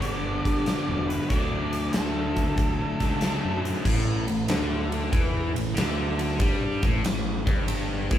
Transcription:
0.00 0.38 G1 medium
0.00 1.29 G2 medium
0.00 1.28 D3 medium
0.00 1.29 G3 medium
0.00 1.30 B3 medium
0.00 1.30 D4 medium
0.00 1.05 D5 medium
0.00 closed hi-hat medium
0.45 0.64 G2 medium
0.45 kick medium
0.45 closed hi-hat medium
0.66 snare loud
0.66 closed hi-hat medium
0.89 1.17 E1 medium
1.08 1.28 B4 medium
1.08 closed hi-hat medium
1.29 1.87 D2 medium
1.29 2.98 D3 medium
1.29 2.98 F#3 medium
1.29 2.99 A3 medium
1.29 2.98 D4 medium
1.29 1.95 D5 medium
1.29 kick loud
1.29 closed hi-hat medium
1.73 closed hi-hat medium
1.92 2.42 D2 medium
1.92 3.60 A4 medium
1.92 snare loud
1.92 closed hi-hat medium
2.36 kick medium
2.36 closed hi-hat medium
2.48 2.76 D2 medium
2.58 kick loud
2.58 closed hi-hat medium
2.99 3.39 C#2 medium
2.99 3.18 D3 medium
2.99 3.20 F#3 medium
2.99 3.20 A3 medium
2.99 3.20 D4 medium
2.99 kick medium
2.99 closed hi-hat medium
3.19 3.83 D3 medium
3.19 3.84 F#3 medium
3.19 3.85 A3 medium
3.19 3.85 D4 medium
3.19 snare loud
3.19 closed hi-hat medium
3.45 3.72 F#2 medium
3.65 closed hi-hat medium
3.84 4.26 A1 medium
3.84 4.25 A2 loud
3.84 kick medium
3.84 crash loud
4.27 4.49 A1 medium
4.27 4.45 A2 medium
4.27 ride medium
4.48 5.11 D2 medium
4.48 5.11 D3 medium
4.48 snare loud
4.48 ride medium
4.92 ride medium
5.12 5.53 E2 loud
5.12 5.54 E3 loud
5.12 kick loud
5.12 ride medium
5.55 5.77 A1 medium
5.55 5.72 A2 medium
5.55 ride medium
5.75 6.38 D2 medium
5.75 6.39 D3 loud
5.75 snare loud
5.75 ride medium
6.19 ride medium
6.40 6.80 G2 medium
6.40 6.82 G3 loud
6.40 kick loud
6.40 ride medium
6.83 7.03 A1 medium
6.83 7.04 A2 medium
6.83 kick loud
6.83 ride medium
7.04 7.46 A1 medium
7.04 7.39 A2 medium
7.04 snare loud
7.04 ride medium
7.46 8.07 G1 medium
7.46 8.10 G2 medium
7.46 kick loud
7.46 ride medium
7.68 ride loud
8.11 8.18 A1 loud
8.11 8.18 A2 medium
8.11 kick loud
8.11 ride medium

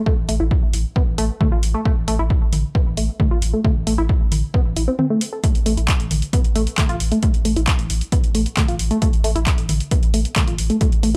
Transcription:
0.06 0.13 A3 medium
0.06 kick loud
0.18 0.28 A1 medium
0.29 0.40 A1 loud
0.29 0.35 A3 medium
0.29 open hi-hat loud
0.40 0.51 A1 medium
0.40 0.44 E4 medium
0.51 kick loud
0.62 0.73 A1 medium
0.73 0.85 A1 loud
0.73 open hi-hat medium
0.96 1.03 B3 medium
0.96 kick loud
1.07 1.18 A1 medium
1.18 1.29 A1 loud
1.18 1.25 A3 medium
1.18 open hi-hat loud
1.41 1.47 A3 medium
1.41 kick loud
1.41 mid tom loud
1.52 1.62 A1 medium
1.52 1.58 F4 medium
1.63 1.74 A1 loud
1.63 open hi-hat loud
1.74 1.81 A3 medium
1.85 1.92 A3 medium
1.85 kick loud
1.97 2.07 A1 medium
2.08 2.19 A1 loud
2.08 2.14 A3 medium
2.08 open hi-hat loud
2.19 2.30 A1 medium
2.19 2.23 E4 medium
2.30 kick loud
2.42 2.52 A1 medium
2.53 2.64 A1 loud
2.53 open hi-hat medium
2.53 mid tom medium
2.75 2.82 B3 medium
2.75 kick loud
2.86 2.97 A1 medium
2.97 3.08 A1 loud
2.97 3.04 A3 medium
2.97 open hi-hat medium
3.20 3.26 A3 medium
3.20 kick loud
3.20 mid tom medium
3.31 3.42 A1 medium
3.31 3.38 F4 medium
3.42 3.53 A1 loud
3.42 open hi-hat loud
3.54 3.60 A3 medium
3.64 3.71 A3 medium
3.64 kick loud
3.64 mid tom medium
3.76 3.86 A1 medium
3.87 3.98 A1 loud
3.87 3.94 A3 medium
3.87 open hi-hat loud
3.98 4.09 A1 medium
3.98 4.02 E4 medium
4.09 kick loud
4.21 4.31 A1 medium
4.32 4.43 A1 medium
4.32 open hi-hat loud
4.32 mid tom medium
4.54 4.61 B3 medium
4.54 kick loud
4.65 4.76 A1 medium
4.76 4.88 A1 loud
4.76 4.83 E4 medium
4.76 open hi-hat loud
4.88 4.92 C4 medium
4.99 5.06 C4 medium
4.99 mid tom medium
5.10 5.20 A3 medium
5.21 open hi-hat loud
5.33 5.39 A4 medium
5.44 5.50 A3 medium
5.44 kick loud
5.44 closed hi-hat loud
5.55 5.65 A1 medium
5.55 closed hi-hat medium
5.66 5.77 A1 loud
5.66 5.73 A3 medium
5.66 open hi-hat loud
5.77 5.88 A1 medium
5.77 5.81 E4 medium
5.77 closed hi-hat medium
5.88 kick loud
5.88 clap loud
5.88 closed hi-hat medium
6.00 6.10 A1 medium
6.00 closed hi-hat medium
6.11 6.22 A1 loud
6.11 open hi-hat loud
6.11 mid tom medium
6.22 closed hi-hat medium
6.33 6.40 B3 medium
6.33 kick loud
6.33 closed hi-hat loud
6.44 6.55 A1 medium
6.44 closed hi-hat medium
6.55 6.67 A1 loud
6.55 6.62 A3 medium
6.55 open hi-hat loud
6.67 closed hi-hat medium
6.78 6.85 A3 medium
6.78 kick loud
6.78 clap loud
6.78 closed hi-hat medium
6.78 mid tom medium
6.89 7.00 A1 medium
6.89 6.96 F4 medium
6.89 closed hi-hat medium
7.00 7.11 A1 loud
7.00 open hi-hat loud
7.12 7.18 A3 medium
7.12 closed hi-hat medium
7.23 7.29 A3 medium
7.23 kick loud
7.23 closed hi-hat medium
7.34 7.45 A1 medium
7.34 closed hi-hat medium
7.45 7.56 A1 loud
7.45 7.52 A3 medium
7.45 open hi-hat loud
7.56 7.67 A1 medium
7.56 7.60 E4 medium
7.56 closed hi-hat medium
7.67 kick loud
7.67 clap loud
7.67 closed hi-hat loud
7.79 7.89 A1 medium
7.79 closed hi-hat medium
7.90 8.01 A1 loud
7.90 open hi-hat loud
8.01 closed hi-hat medium
8.12 8.19 B3 medium
8.12 kick loud
8.12 closed hi-hat loud
8.24 8.34 A1 medium
8.24 closed hi-hat medium
8.35 8.46 A1 loud
8.35 8.41 A3 medium
8.35 open hi-hat loud
8.46 closed hi-hat medium
8.57 8.64 A3 medium
8.57 kick loud
8.57 clap loud
8.57 closed hi-hat medium
8.57 mid tom medium
8.68 8.79 A1 medium
8.68 8.75 F4 medium
8.68 closed hi-hat medium
8.79 8.91 A1 medium
8.79 open hi-hat loud
8.91 8.97 A3 medium
8.91 closed hi-hat medium
9.02 9.09 A3 medium
9.02 kick loud
9.02 closed hi-hat medium
9.13 9.24 A1 medium
9.13 closed hi-hat medium
9.24 9.35 A1 loud
9.24 9.31 A3 medium
9.24 open hi-hat loud
9.35 9.46 A1 medium
9.35 9.39 E4 medium
9.35 closed hi-hat medium
9.47 kick loud
9.47 clap loud
9.47 closed hi-hat medium
9.58 9.68 A1 medium
9.58 closed hi-hat medium
9.69 9.80 A1 loud
9.69 open hi-hat loud
9.69 mid tom medium
9.80 closed hi-hat medium
9.91 9.98 B3 medium
9.91 kick loud
9.91 closed hi-hat loud
10.03 10.13 A1 medium
10.03 closed hi-hat medium
10.14 10.25 A1 loud
10.14 10.20 A3 medium
10.14 open hi-hat loud
10.25 closed hi-hat medium
10.36 10.43 A3 medium
10.36 kick loud
10.36 clap loud
10.36 closed hi-hat medium
10.36 mid tom medium
10.47 10.58 A1 medium
10.47 10.54 F4 medium
10.47 closed hi-hat medium
10.58 10.70 A1 loud
10.58 open hi-hat loud
10.70 10.76 A3 medium
10.70 closed hi-hat medium
10.81 10.88 A3 medium
10.81 kick loud
10.81 closed hi-hat medium
10.92 11.03 A1 medium
10.92 closed hi-hat medium
11.03 11.14 A1 loud
11.03 11.10 A3 medium
11.03 open hi-hat loud

